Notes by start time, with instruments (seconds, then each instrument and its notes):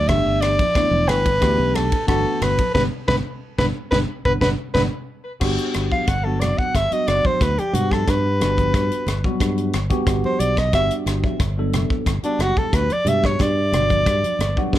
Already playing: fingered electric bass D2
0.08 fingered electric bass G1, tine electric piano E3 A3 B3 D4 G4, soprano saxophone E5, kick, cross-stick, ride
0.26 fingered electric bass G1
0.41 soprano saxophone D5, cross-stick, ride
0.59 kick, ride, high conga
0.74 tine electric piano E3 A3 B3 D4 E4, muted fingered electric bass stroke, kick, cross-stick, ride, low conga
0.91 fingered electric bass E1, high conga
1.07 fingered electric bass G1, soprano saxophone B4, cross-stick, ride, low conga
1.26 kick, ride
1.40 fingered electric bass D2, tine electric piano E3 A3 B3 D4 G4, kick, cross-stick, ride
1.58 fingered electric bass B1
1.75 soprano saxophone A4, cross-stick, ride, low conga
1.92 kick, ride
2.06 fingered electric bass G1, tine electric piano E3 A3 B3 D4 F#4, soprano saxophone A4, kick, cross-stick, ride, high conga
2.41 fingered electric bass G1, soprano saxophone B4, cross-stick, ride, low conga
2.58 kick, ride, high conga
2.74 fingered electric bass G1, tine electric piano G3 B3 D4, soprano saxophone B4, kick, snare, low conga
3.07 fingered electric bass G1, tine electric piano G3 B3 D4, soprano saxophone B4, kick, snare, low conga
3.58 fingered electric bass G1, tine electric piano G3 B3 D4, soprano saxophone B4, kick, snare, low conga
3.91 fingered electric bass G1, tine electric piano G3 B3 D4, soprano saxophone B4, kick, snare, low conga
4.25 fingered electric bass G1, tine electric piano G3 B3 D4, soprano saxophone B4, kick, low conga
4.40 fingered electric bass G1, tine electric piano G3 B3 D4, soprano saxophone B4, kick, snare, low conga
4.74 fingered electric bass G1, tine electric piano G3 B3 D4, soprano saxophone B4, kick, snare, low conga
5.40 fingered electric bass G1, tine electric piano G3 B3 D4 F#4 G4, kick, cross-stick, crash
5.58 closed hi-hat
5.74 fingered electric bass G1, cross-stick, closed hi-hat
5.92 soprano saxophone F5, kick, high conga
6.07 fingered electric bass G1, soprano saxophone F#5, kick, cross-stick, closed hi-hat
6.24 tine electric piano F#3 G3 B3 D4 F#4, soprano saxophone A4
6.40 fingered electric bass F#1, soprano saxophone D5, cross-stick, closed hi-hat, low conga
6.58 soprano saxophone F#5, kick
6.74 fingered electric bass G1, soprano saxophone E5, kick, cross-stick, closed hi-hat
6.91 tine electric piano F#3 G3 B3 D4 F#4, soprano saxophone D#5, muted fingered electric bass stroke, closed hi-hat
7.08 fingered electric bass F#1, soprano saxophone D5, cross-stick, closed hi-hat
7.25 soprano saxophone C5, muted fingered electric bass stroke, kick, high conga
7.41 fingered electric bass D2, soprano saxophone B4, kick, cross-stick, closed hi-hat
7.58 soprano saxophone G4, muted fingered electric bass stroke, closed hi-hat, high conga
7.73 fingered electric bass G2, tine electric piano G3 B3 D4 F#4 G4, soprano saxophone F#4, closed hi-hat, low conga
7.91 soprano saxophone A4, kick, cross-stick, high conga
8.08 fingered electric bass G2, soprano saxophone B4, kick, cross-stick, closed hi-hat
8.40 fingered electric bass G1, tine electric piano G3 B3 D4 F#4 G4, cross-stick, closed hi-hat
8.57 kick, closed hi-hat, high conga
8.74 fingered electric bass G2, kick, cross-stick, closed hi-hat
8.91 muted fingered electric bass stroke, closed hi-hat
9.07 fingered electric bass G1, cross-stick, closed hi-hat, low conga
9.24 tine electric piano F#3 G3 B3 D4 F#4, kick
9.40 fingered electric bass G2, kick, cross-stick, closed hi-hat
9.58 closed hi-hat
9.73 fingered electric bass G1, cross-stick, closed hi-hat
9.90 tine electric piano G3 B3 D4 F#4 G4, kick, closed hi-hat, high conga
10.07 fingered electric bass G1, kick, cross-stick, closed hi-hat
10.24 soprano saxophone C5, high conga
10.39 fingered electric bass B1, soprano saxophone D5, closed hi-hat
10.57 soprano saxophone D#5, kick, cross-stick, closed hi-hat, high conga
10.73 fingered electric bass G1, tine electric piano G3 B3 D4 F#4 G4, soprano saxophone E5, kick, cross-stick, closed hi-hat
10.91 closed hi-hat
11.06 fingered electric bass G1, cross-stick, closed hi-hat
11.24 kick, high conga
11.40 fingered electric bass G1, kick, cross-stick, closed hi-hat
11.58 tine electric piano F#3 G3 B3 D4 A4
11.72 fingered electric bass F#1, cross-stick, closed hi-hat, low conga
11.90 kick
12.06 fingered electric bass G1, kick, cross-stick, closed hi-hat
12.23 tine electric piano G3 B3 D4 F#4 G4, soprano saxophone D4, muted fingered electric bass stroke, closed hi-hat
12.39 fingered electric bass F#1, soprano saxophone F#4, cross-stick, closed hi-hat
12.57 soprano saxophone A4, kick, high conga
12.73 fingered electric bass D2, soprano saxophone B4, kick, cross-stick, closed hi-hat
12.90 soprano saxophone D5, muted fingered electric bass stroke, closed hi-hat, high conga
13.05 fingered electric bass G2, tine electric piano G3 B3 D4 F#4 G4, soprano saxophone E5, closed hi-hat, low conga
13.23 soprano saxophone C#5, kick, cross-stick, high conga
13.39 fingered electric bass G2, soprano saxophone D5, kick, cross-stick, closed hi-hat, low conga
13.72 fingered electric bass G1, tine electric piano F#3 G3 B3 D4 F#4, cross-stick, closed hi-hat, low conga
13.90 kick, closed hi-hat, high conga
14.06 fingered electric bass G2, kick, cross-stick, closed hi-hat
14.23 muted fingered electric bass stroke, closed hi-hat, high conga
14.39 fingered electric bass G1, tine electric piano B4, cross-stick, closed hi-hat, low conga
14.56 tine electric piano F#3 G3 B3 D4 F#4, kick
14.73 fingered electric bass G2, tine electric piano D5, kick, snare